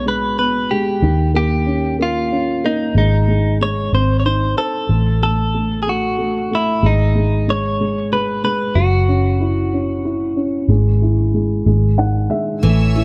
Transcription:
Already playing: B1 B2 G#3 B3
0.06 G#3 B4
0.39 B3 B4
0.71 G#3 G4
1.02 D#2 D#3
1.34 A#3 G4
1.66 C#4
1.99 A#3 F4
2.32 C#4
2.64 A#3 D#4
2.95 G#1 G#3 D#4
3.28 G#3
3.61 G#3 C#5
3.93 G#1 C4 C5
4.20 C#5
4.25 D#4 C5
4.57 A4 C5
4.89 A1 A3
5.22 A3 A4
5.54 A3
5.83 A3 G#4
5.89 F#4
6.18 A3
6.51 A3 E4
6.83 G#1 G#3 D#4
7.15 G#3
7.48 G#3 C#5
7.80 G#3
8.12 G#3 B4
8.44 G#3 B4
8.75 F#1 F#3 F#4
9.08 C#4
9.40 E4
9.73 C#4
10.05 E4
10.36 C#4
10.68 G#1 G#3
10.76 E4
11.02 E4
11.34 G#3
11.66 G#1 G#3
11.98 D#3 F#5
12.30 G#3 E5
12.62 A1 E3 A3 C#5 E5 G#5 E6
12.96 A3 E4

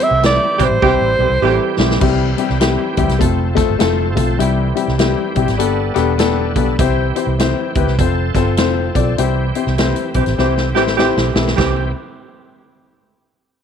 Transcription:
Already playing: E3 C4 G4
0.00 G3 C4 E4 G4 E5, closed hi-hat
0.11 C2
0.22 G3 C4 E4 G4 D5, snare, closed hi-hat
0.58 B1 E3 G3 C4 E4 G4, kick, closed hi-hat
0.63 C5
0.70 A1
0.81 C2 E3 G3 C4 E4 G4, kick
1.01 A1
1.18 B1 E3 G3 C4 E4 G4 A4
1.30 C2
1.42 A1 E3 G3 C4 E4 G4 A4
1.78 B1 G3 C4 E4 G4, snare
1.91 snare
2.00 C2 E3 G3 C4 E4 G4, kick, crash
2.37 G3 C4 E4 G4, closed hi-hat
2.50 C2, snare
2.60 G3 C4 E4 G4, snare, closed hi-hat
2.97 D2 G3 C4 E4 G4, kick, closed hi-hat
3.09 C2, snare, closed hi-hat
3.19 F1 F3 A3 C4 F4 A4, kick, closed hi-hat
3.55 A3 C4 F4 A4, kick, snare, closed hi-hat
3.69 G1
3.79 F1 A3 C4 F4 A4, snare, closed hi-hat
4.15 B1 A3 C4 F4 A4, kick, closed hi-hat
4.39 C2 E3 G3 C4 E4 G4, closed hi-hat
4.75 G3 C4 E4 G4, closed hi-hat
4.88 C2, snare
4.98 G3 C4 E4 G4, snare, closed hi-hat
5.35 B1 G3 C4 E4 G4, kick, closed hi-hat
5.48 A1, snare, closed hi-hat
5.57 G1 G3 B3 D4 G4 A4, closed hi-hat
5.94 E1 B3 D4 G4 A4, snare, closed hi-hat
6.18 B3 D4 G4 A4, snare, closed hi-hat
6.55 B1 B3 D4 G4 A4, kick, closed hi-hat
6.78 C2 E3 C4 E4 G4 C5, kick, closed hi-hat
7.15 C4 E4 G4 C5, closed hi-hat
7.27 C2
7.39 C4 E4 G4 C5, snare, closed hi-hat
7.75 D2 C4 E4 G4 B4, kick, closed hi-hat
7.87 C2, snare
7.98 F1 F3 C4 F4 A4 C5, kick, closed hi-hat
8.34 G1 C4 F4 A4 C5, kick, snare, closed hi-hat
8.57 F1 C4 F4 A4 C5, snare, closed hi-hat
8.95 B1 C4 F4 A4 D5, kick, closed hi-hat
9.18 C2 E3 C4 E4 G4 C5, closed hi-hat
9.55 C4 E4 G4 C5, closed hi-hat
9.67 C2, snare
9.78 C4 E4 G4 C5, snare, closed hi-hat
9.96 closed hi-hat
10.14 B1 E3 C4 E4 G4 C5, kick, closed hi-hat
10.26 A1, snare, closed hi-hat
10.38 C2 E3 C4 E4 G4 C5, snare
10.57 snare
10.74 A1 E3 C4 E4 G4 C5, snare
10.87 snare
10.97 E3 C4 E4 G4 C5, snare
11.17 B1, snare
11.35 B1 C4 E4 G4 A4, snare
11.47 snare
11.56 C2 E3 C4 E4 G4 C5, kick, snare

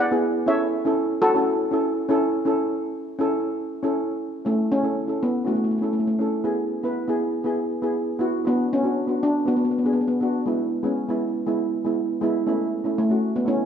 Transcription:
0.00 D5 F#5
0.11 B3 E4 G#4
0.46 C#4 E4 A4 C#5 E5
0.85 C#4 E4 A4
1.22 F#4 A4
1.35 C#4 E4 A4
1.71 C#4 E4 A4
2.09 C#4 E4 A4
2.45 C#4 E4 A4
3.19 C#4 E4 A4
3.83 C#4 E4 A4
4.45 A3 C#4 E4 A4
4.72 C#4
4.83 C#4 E4 A4
5.07 C#4 E4 A4
5.23 B3
5.45 A3 C#4 E4 F#4
5.55 A3
5.64 A3
5.71 A3
5.78 A3 C#4
5.82 A3 E4 A4
5.93 A3
6.00 A3
6.07 A3
6.19 C#4 E4 A4
6.44 B3 E4 G#4
6.83 B3 E4 B4
7.08 B3 E4 G#4
7.44 B3 E4 G#4
7.82 B3 E4 G#4
8.19 B3 E4 F#4
8.45 B3 D4 F#4
8.73 C#4
8.83 B3 D4 F#4
9.07 B3 D4 F#4
9.23 D4
9.45 B3 D4 F#4
9.57 B3
9.65 B3
9.71 B3
9.79 B3
9.84 B3 D4 G#4
9.93 B3
10.01 B3
10.08 B3
10.21 B3 D4 F#4
10.46 G#3 B3 E4
10.83 G#3 B3 C#4
11.09 G#3 B3 E4
11.46 G#3 B3 E4
11.85 G#3 B3 E4
12.21 G#3 B3 E4
12.47 A3 C#4 E4
12.84 A3 C#4 E4
12.98 A3
13.09 A3 C#4 F#4
13.36 B3
13.45 A3 C#4 E4

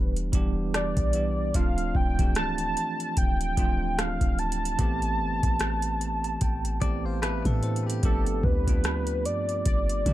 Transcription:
Already playing: E1 E3 G3 B3 D4 G4 B4
0.17 closed hi-hat
0.32 E1 E3 G3 B3 D4 G4, kick, closed hi-hat
0.74 D5, cross-stick, closed hi-hat
0.97 B1, kick, closed hi-hat
1.13 E3 G3 B3 D4 G4, closed hi-hat
1.54 D1 F3 A3 C4 D4 F4 F5, kick, closed hi-hat
1.78 closed hi-hat
1.95 D1 G5, kick
2.18 E3 A3 C4 D4 G4, kick, closed hi-hat
2.35 C1 A5, cross-stick, closed hi-hat
2.58 D1, closed hi-hat
2.77 closed hi-hat
3.00 closed hi-hat
3.17 D1 G5, kick, closed hi-hat
3.41 closed hi-hat
3.57 D1 F3 A3 C4 D4 F4, kick, closed hi-hat
3.99 F5, cross-stick, closed hi-hat
4.21 D1, kick, closed hi-hat
4.39 A5, closed hi-hat
4.52 closed hi-hat
4.65 closed hi-hat
4.78 A1 E3 A3 B3 C4 G4, kick, closed hi-hat
5.02 closed hi-hat
5.20 G1
5.43 A1, kick, closed hi-hat
5.59 cross-stick, closed hi-hat
5.82 closed hi-hat
6.01 A5, closed hi-hat
6.24 A5, closed hi-hat
6.41 A1 G5, kick, closed hi-hat
6.65 closed hi-hat
6.81 A1 E3 A3 B3 C4 G4 D5, kick, closed hi-hat
7.05 C5 F5
7.22 B3 G4 B4 E5, cross-stick, closed hi-hat
7.45 A2 D4 A4 B4, kick, closed hi-hat
7.63 E4 C5, closed hi-hat
7.76 closed hi-hat
7.86 C4 G4 A4, closed hi-hat
8.03 G1 F3 A3 B3 D4 G4 A4, kick, closed hi-hat
8.26 closed hi-hat
8.43 D2 B4, kick
8.67 F3 A3 B3 D4 F4, kick, closed hi-hat
8.84 cross-stick, closed hi-hat
9.07 closed hi-hat
9.25 G2 D5, closed hi-hat
9.49 closed hi-hat
9.66 G1 D5, kick, closed hi-hat
9.89 closed hi-hat
10.05 B2 F3 A3 B3 D4 G4, kick, closed hi-hat

